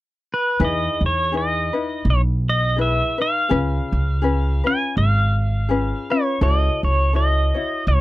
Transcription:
0.34 B4
0.60 E2 D#4 E4 G#4 B4
0.64 D#5
1.01 E2
1.06 C#5
1.32 D#4 E4 G#4 B4
1.37 D#5
1.73 D#4 E4 B4
2.05 B1
2.10 C#5
2.49 D#5
2.76 E4 G#4 B4
2.81 E5
3.18 D#4 B4 F5
3.49 C#2 C#4 F4 G#4 B4
3.92 C#2
4.22 C#4 F4 G#4 B4
4.64 C#4 F4 B4 G#5
4.97 G#1 F5
5.69 C#4 F4 G#4 B4
6.10 C#4 F4 B4 C#5
6.41 C#2 E4 F#4 A4 C#5 D#5
6.83 C#2 C#5
7.13 E4 F#4 A4 C#5 D#5
7.54 E4 F#4 C#5
7.87 C#2 C#5

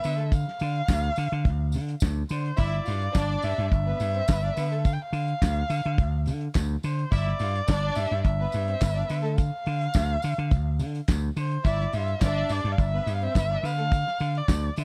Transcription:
Already playing: E5
0.01 D3 B3 B4, open hi-hat, tambourine
0.17 A3 A4, closed hi-hat
0.32 F5, kick, closed hi-hat, tambourine
0.48 snare
0.59 D3, open hi-hat, tambourine
0.76 closed hi-hat
0.88 D2, kick, snare, clap, closed hi-hat, tambourine
1.16 D3, open hi-hat, tambourine
1.32 D3, closed hi-hat
1.45 D2, kick, closed hi-hat
1.72 D3, open hi-hat, tambourine
1.88 closed hi-hat
2.00 D2, kick, snare, clap, closed hi-hat, tambourine
2.29 D3 C5, open hi-hat, tambourine
2.46 closed hi-hat
2.57 G1 E4 D5 E5, kick, closed hi-hat, tambourine
2.85 G2 F4 F5, open hi-hat, tambourine
3.01 closed hi-hat
3.13 G1 D4 D5, kick, snare, clap, closed hi-hat, tambourine
3.42 G2 E5, open hi-hat, tambourine
3.58 G2, closed hi-hat
3.71 G1 E5, kick, closed hi-hat
3.87 B3 B4
4.00 G2, open hi-hat, tambourine
4.14 C4 C5, closed hi-hat
4.28 G1 B3 B4, kick, snare, clap, closed hi-hat, tambourine
4.43 D4 D5
4.56 D3 B3 B4, open hi-hat, tambourine
4.71 A3 A4, closed hi-hat
4.85 F5, kick, closed hi-hat, tambourine
4.93 G5
5.02 F5
5.13 D3, open hi-hat, tambourine
5.28 closed hi-hat
5.42 D2, kick, snare, clap, closed hi-hat, tambourine
5.70 D3, open hi-hat, tambourine
5.85 D3, closed hi-hat
5.98 D2, kick, closed hi-hat
6.26 D3, open hi-hat, tambourine
6.41 closed hi-hat
6.54 D2, kick, snare, clap, closed hi-hat, tambourine
6.83 D3 C5, open hi-hat, tambourine
6.99 closed hi-hat
7.11 G1 E4 D5 E5, kick, closed hi-hat, tambourine
7.27 snare
7.39 G2 F4 F5, open hi-hat, tambourine
7.55 closed hi-hat
7.68 G1 D4 D5, kick, snare, clap, closed hi-hat, tambourine
7.95 G2 E5, open hi-hat, tambourine
8.11 G2, closed hi-hat
8.24 G1 E5, kick, closed hi-hat
8.40 B3 B4
8.52 G2, open hi-hat, tambourine
8.67 C4 C5, closed hi-hat
8.81 G1 B3 B4, kick, snare, clap, closed hi-hat, tambourine
8.95 D4 D5
9.07 D3 B3 B4, open hi-hat, tambourine
9.22 A3 A4, closed hi-hat
9.36 F5, kick, closed hi-hat, tambourine
9.66 D3, open hi-hat
9.81 closed hi-hat
9.94 D2, kick, snare, clap, closed hi-hat, tambourine
10.22 D3, open hi-hat, tambourine
10.38 D3, closed hi-hat
10.51 D2, kick, closed hi-hat, tambourine
10.79 D3, open hi-hat, tambourine
10.95 closed hi-hat
11.08 D2, kick, snare, clap, closed hi-hat, tambourine
11.36 D3 C5, open hi-hat, tambourine
11.51 closed hi-hat
11.64 G1 E4 D5 E5, kick, closed hi-hat, tambourine
11.80 snare
11.92 G2 F4 E5 F5, open hi-hat, tambourine
12.08 closed hi-hat
12.21 G1 D4 D5 E5, kick, snare, clap, closed hi-hat, tambourine
12.49 G2 D5, open hi-hat, tambourine
12.64 G2, closed hi-hat
12.72 F5
12.78 G1 E5, kick, closed hi-hat, tambourine
12.93 B3 B4
13.07 G2, open hi-hat, tambourine
13.15 F5
13.22 C4 C5 E5, closed hi-hat
13.34 G1 B3 B4, kick, snare, clap, closed hi-hat, tambourine
13.49 D4 D5
13.62 D3 B3 B4 F5, open hi-hat, tambourine
13.78 A3 A4, closed hi-hat
13.92 kick, closed hi-hat, tambourine
14.07 snare
14.20 D3, open hi-hat, tambourine
14.35 D5, closed hi-hat
14.48 D2, kick, snare, clap, closed hi-hat, tambourine
14.76 D3, open hi-hat, tambourine
14.81 E5

